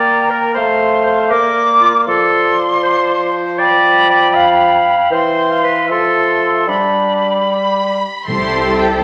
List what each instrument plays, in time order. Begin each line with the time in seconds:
Already playing: bassoon A#3, clarinet D5, cor anglais G5, flute A#5
0.30 clarinet A#4
0.54 bassoon A3, clarinet C5, cor anglais F5, flute C6
1.06 clarinet C5
1.30 bassoon A#3, clarinet A#4, cor anglais D5, flute D6
1.81 clarinet F4
2.06 bassoon F3, clarinet A4, cor anglais D5, flute C6
2.83 clarinet C5
3.58 clarinet D5, cor anglais G5, flute B5
4.09 clarinet D5
4.34 clarinet F5
5.11 bassoon E3, clarinet C5, cor anglais G5, flute C6
5.50 cor anglais F5
5.64 clarinet B4
5.88 bassoon F3, clarinet A4, cor anglais E5, flute C6
6.67 bassoon G3, clarinet D4, cor anglais D5, flute B5
7.49 violin section B5
8.26 double bass section C2, timpani C3, viola section G3 E4, violin section G4 C5 C6, cello section A4
8.79 violin section G5